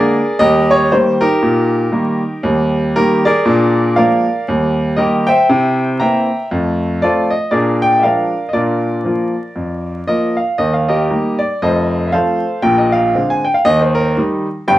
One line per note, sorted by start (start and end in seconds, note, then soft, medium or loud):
0.00 0.18 D3 medium
0.00 0.18 G#3 soft
0.00 0.18 A#3 medium
0.00 0.38 G#4 medium
0.00 0.38 A#4 medium
0.00 0.41 D5 medium
0.39 0.83 D#2 medium
0.39 0.69 G3 medium
0.39 0.68 G4 medium
0.39 0.68 A#4 medium
0.39 0.70 D#5 loud
0.71 0.92 C#5 loud
0.92 1.20 D#3 soft
0.92 1.20 G3 medium
0.92 1.21 A#3 soft
0.92 1.21 C5 medium
1.21 2.41 D#4 medium
1.21 2.41 G4 medium
1.21 2.44 A#4 loud
1.43 1.86 A#2 medium
1.92 2.20 D#3 soft
1.92 2.20 G3 soft
1.92 2.21 A#3 medium
2.43 2.87 D#2 medium
2.43 2.73 G3 medium
2.96 3.24 D#3 medium
2.96 3.24 G3 medium
2.96 3.24 A#3 medium
2.96 3.23 D#4 medium
2.96 3.23 G4 medium
2.96 3.25 A#4 loud
3.25 3.94 G#4 medium
3.25 3.94 A#4 medium
3.25 3.96 D5 loud
3.46 3.89 A#2 medium
3.46 3.75 D4 medium
3.96 4.24 F3 soft
3.96 4.25 G#3 soft
3.96 4.25 A#3 medium
3.96 4.44 A#4 medium
3.96 4.45 D5 medium
3.96 4.47 F5 medium
4.48 4.91 D#2 medium
4.48 4.77 G3 soft
4.96 5.26 D#3 soft
4.96 5.26 G3 medium
4.96 5.26 A#3 medium
4.96 5.26 G4 medium
4.96 5.26 A#4 medium
4.96 5.27 D#5 medium
5.27 5.97 C5 medium
5.27 5.97 E5 medium
5.27 5.99 G5 loud
5.49 5.93 C3 medium
5.49 5.78 E4 medium
6.00 6.28 E3 soft
6.00 6.29 A#3 soft
6.00 6.29 C4 medium
6.00 6.48 E5 medium
6.00 6.48 G5 medium
6.00 6.51 A#5 medium
6.51 6.95 F2 medium
6.51 6.80 A3 soft
7.02 7.31 F3 soft
7.02 7.31 A3 soft
7.02 7.32 C4 soft
7.02 7.31 F4 medium
7.02 7.31 A4 medium
7.02 7.32 D5 medium
7.30 7.52 D#5 medium
7.51 7.95 A#2 medium
7.51 7.81 D4 medium
7.51 7.80 G#4 medium
7.51 7.80 A#4 medium
7.51 7.82 D5 medium
7.82 7.98 G5 loud
7.99 8.31 F3 soft
7.99 8.05 E5 medium
7.99 8.49 F5 medium
8.04 8.32 G#3 soft
8.04 8.32 D4 soft
8.04 8.46 A#4 medium
8.04 8.46 D5 medium
8.49 8.55 D#5 soft
8.53 8.97 A#2 medium
8.53 8.83 D4 soft
8.53 9.04 F4 soft
8.53 10.07 A#4 medium
8.53 10.37 D5 medium
9.05 9.33 F3 soft
9.05 9.34 A#3 soft
9.05 9.34 F4 soft
9.56 10.00 F2 medium
10.07 10.35 F3 soft
10.07 10.36 A#3 soft
10.07 10.36 F4 soft
10.07 10.36 A#4 medium
10.07 10.37 D#5 medium
10.37 10.59 F5 medium
10.58 11.02 D#2 medium
10.58 11.02 D#3 medium
10.58 10.73 D#5 medium
10.74 10.89 F5 medium
10.88 11.37 G4 medium
10.88 11.36 A#4 medium
10.88 11.40 D#5 medium
11.11 11.39 G3 soft
11.11 11.39 A#3 soft
11.11 11.39 D#4 soft
11.39 11.61 D5 medium
11.62 12.05 F1 medium
11.62 12.05 F2 medium
11.62 12.04 A4 medium
11.62 12.05 C5 medium
11.62 12.07 D#5 medium
12.07 12.13 E5 medium
12.12 12.41 F3 soft
12.12 12.41 A3 soft
12.12 12.42 C4 soft
12.12 12.61 A4 medium
12.12 12.60 C5 medium
12.12 12.63 F5 medium
12.62 13.06 A#1 medium
12.62 13.07 A#2 medium
12.62 12.78 G5 medium
12.78 12.93 D#5 medium
12.92 13.29 F5 medium
13.15 13.43 D3 soft
13.15 13.43 G#3 soft
13.15 13.43 C4 soft
13.30 13.45 G#5 medium
13.45 13.55 G5 medium
13.54 13.65 F5 medium
13.65 14.09 D#2 medium
13.65 14.09 D#3 medium
13.65 13.80 D#5 loud
13.81 13.96 C5 medium
13.95 14.17 A#4 medium
14.17 14.45 D#3 soft
14.17 14.46 G3 soft
14.17 14.46 D#4 medium
14.68 14.79 G1 medium
14.68 14.79 G2 medium
14.68 14.79 G5 loud